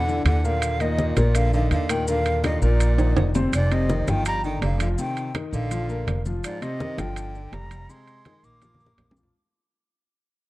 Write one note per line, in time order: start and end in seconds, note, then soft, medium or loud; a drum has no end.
0.00 0.22 E2 medium
0.00 0.24 D3 medium
0.00 0.26 F#5 loud
0.08 0.38 D3 medium
0.08 0.38 D4 medium
0.08 0.38 E4 medium
0.08 high conga soft
0.08 maracas soft
0.25 1.10 D#2 medium
0.25 0.44 D3 medium
0.25 0.46 F#5 loud
0.25 high conga medium
0.25 high timbale loud
0.25 maracas soft
0.44 0.74 A#2 medium
0.44 0.82 D3 medium
0.44 0.74 A#3 medium
0.44 0.74 A#4 medium
0.44 0.83 F5 loud
0.44 maracas medium
0.62 high conga soft
0.62 high timbale medium
0.62 maracas medium
0.80 1.17 A#2 medium
0.80 1.10 D#3 medium
0.80 1.10 A#3 medium
0.80 1.10 D#4 medium
0.80 1.19 D#5 medium
0.80 high conga soft
0.80 high timbale medium
0.80 maracas soft
0.99 high conga medium
0.99 maracas soft
1.16 1.67 A#1 medium
1.16 1.47 A#2 medium
1.16 1.37 A#2 medium
1.16 1.47 A#3 medium
1.16 1.47 A#4 medium
1.16 1.37 D5 medium
1.16 high conga loud
1.16 high timbale medium
1.16 maracas medium
1.35 1.53 D3 medium
1.35 1.53 F5 loud
1.35 high conga soft
1.35 high timbale medium
1.35 maracas medium
1.53 1.70 D3 medium
1.53 1.83 D#3 medium
1.53 1.83 D4 medium
1.53 1.83 D#4 medium
1.53 1.71 F5 medium
1.53 high conga soft
1.53 maracas soft
1.71 2.56 D#2 medium
1.71 1.91 D3 medium
1.71 1.92 F5 medium
1.71 high conga medium
1.71 high timbale medium
1.71 maracas soft
1.89 2.04 A#2 medium
1.89 2.08 D#3 medium
1.89 2.04 A#3 medium
1.89 2.05 A#4 medium
1.89 2.08 G5 medium
1.89 high timbale loud
1.89 maracas medium
2.08 2.37 A#2 medium
2.08 2.42 D3 medium
2.08 2.38 A#3 medium
2.08 2.38 A#4 medium
2.08 2.42 F5 loud
2.08 high conga soft
2.08 maracas medium
2.26 high conga soft
2.26 high timbale medium
2.26 maracas soft
2.44 2.61 A#2 medium
2.44 2.59 D3 medium
2.44 2.59 D4 medium
2.44 2.59 D#4 medium
2.44 2.61 D#5 medium
2.44 high conga medium
2.44 high timbale medium
2.44 maracas soft
2.62 3.13 A#1 medium
2.62 2.92 A#2 medium
2.62 3.31 A#2 medium
2.62 2.92 A#3 medium
2.62 2.92 A#4 medium
2.62 3.31 D5 medium
2.62 high conga soft
2.62 maracas medium
2.80 high conga soft
2.80 high timbale medium
2.80 maracas medium
2.98 3.28 D#3 medium
2.98 3.29 D4 medium
2.98 3.29 D#4 medium
2.98 high conga soft
2.98 high timbale medium
2.98 maracas soft
3.16 3.49 F1 medium
3.16 high conga medium
3.16 high timbale loud
3.16 maracas soft
3.35 3.50 C3 medium
3.35 3.50 C4 medium
3.35 3.50 C5 medium
3.35 high conga medium
3.35 low timbale medium
3.35 maracas medium
3.53 4.03 F1 medium
3.53 3.74 G#2 medium
3.53 3.74 D5 medium
3.53 high conga soft
3.53 high timbale medium
3.53 maracas medium
3.71 3.86 C3 medium
3.71 4.11 C3 medium
3.71 3.86 C4 medium
3.71 4.10 D#5 medium
3.71 high conga soft
3.71 high timbale medium
3.71 maracas soft
3.89 4.05 D#3 medium
3.89 4.05 D#4 medium
3.89 high conga medium
3.89 maracas soft
4.07 4.58 G1 medium
4.07 4.26 D#3 medium
4.07 4.38 F3 medium
4.07 4.38 F4 medium
4.07 4.26 G5 medium
4.07 high conga loud
4.07 high timbale medium
4.07 maracas medium
4.25 4.43 G3 medium
4.25 4.43 A#5 loud
4.25 high conga soft
4.25 high timbale medium
4.25 maracas medium
4.44 4.74 D3 medium
4.44 4.61 D#3 medium
4.44 4.74 D4 medium
4.44 4.62 G5 medium
4.44 high conga soft
4.44 maracas soft
4.62 4.94 F1 medium
4.62 4.79 D3 medium
4.62 4.80 F5 medium
4.62 high conga medium
4.62 high timbale medium
4.62 low timbale medium
4.62 maracas soft
4.80 4.89 D3 medium
4.80 4.95 F3 medium
4.80 4.96 F4 medium
4.80 4.88 F5 medium
4.80 high conga soft
4.80 high timbale loud
4.80 maracas medium
4.98 5.28 C3 medium
4.98 5.33 D#3 medium
4.98 5.29 C4 medium
4.98 5.33 G5 loud
4.98 high conga soft
4.98 maracas medium
5.17 high conga soft
5.17 high timbale medium
5.17 maracas soft
5.34 5.64 D#3 medium
5.34 5.65 D#4 medium
5.34 high conga medium
5.34 high timbale medium
5.34 maracas soft
5.53 6.03 A#1 medium
5.53 6.22 D3 medium
5.53 6.22 F5 loud
5.53 high conga soft
5.53 maracas medium
5.71 5.86 F3 medium
5.71 5.86 F4 medium
5.71 high conga soft
5.71 high timbale medium
5.71 maracas medium
5.89 6.19 A#3 medium
5.89 6.19 A#4 medium
5.89 high conga soft
5.89 maracas soft
6.07 6.39 F1 medium
6.07 high conga medium
6.07 high timbale medium
6.07 low timbale medium
6.07 maracas soft
6.26 6.56 F3 medium
6.26 6.56 F4 medium
6.26 high conga medium
6.26 maracas medium
6.44 6.64 G#2 medium
6.44 6.63 D5 medium
6.44 high conga soft
6.44 high timbale loud
6.44 maracas medium
6.62 6.77 C3 medium
6.62 7.01 C3 medium
6.62 6.77 C4 medium
6.62 7.00 D#5 medium
6.62 high conga soft
6.62 high timbale medium
6.62 maracas soft
6.80 6.95 D#3 medium
6.80 6.96 D#4 medium
6.80 high conga medium
6.80 maracas soft
6.98 7.49 G1 medium
6.98 7.54 D3 medium
6.98 7.28 F3 medium
6.98 7.29 F4 medium
6.98 7.55 G5 medium
6.98 high conga loud
6.98 high timbale medium
6.98 maracas medium
7.16 high conga soft
7.16 high timbale medium
7.16 maracas medium
7.35 7.65 D3 medium
7.35 7.65 D4 medium
7.35 high conga soft
7.35 maracas soft
7.52 7.85 F1 loud
7.52 7.91 G3 medium
7.52 7.91 A#5 loud
7.52 high conga medium
7.52 high timbale medium
7.52 low timbale medium
7.52 maracas soft
7.71 7.86 F3 medium
7.71 7.86 F4 medium
7.71 high conga soft
7.71 high timbale medium
7.71 maracas medium
7.89 8.19 C3 medium
7.89 8.45 G#3 medium
7.89 8.19 C4 medium
7.89 8.46 C6 loud
7.89 high conga soft
7.89 maracas medium
8.07 high conga soft
8.07 high timbale medium
8.07 maracas soft
8.25 8.56 D#3 medium
8.25 8.56 D#4 medium
8.25 high conga medium
8.25 high timbale medium
8.25 maracas soft
8.43 8.94 A#1 medium
8.43 9.17 A#3 medium
8.43 9.17 D6 medium
8.43 high conga soft
8.43 maracas medium
8.62 8.77 F3 medium
8.62 8.77 F4 medium
8.62 high conga medium
8.62 high timbale medium
8.62 maracas medium
8.74 high conga medium
8.80 9.10 A#3 medium
8.80 9.10 A#4 medium
8.80 maracas soft
8.86 high conga medium
8.98 9.30 A#1 medium
8.98 low conga medium
8.98 high timbale medium
8.98 low timbale medium
8.98 maracas soft
9.11 low conga loud
9.16 9.32 F3 medium
9.16 9.32 F4 medium
9.16 maracas medium
9.23 low conga loud